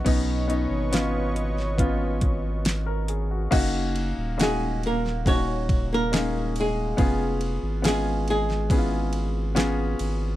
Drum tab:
CC |x---------------|x---------------|----------------|
RD |----------------|x-x-x-x-x-x-x-x-|x-x-x-x-x-x-x-x-|
HH |x-x-x-x-x-x-x-x-|----------------|----------------|
SD |----o--o----o---|----o--o----o---|----o--o----o---|
BD |o-------o-o-----|o-------o-o-----|o-------o-------|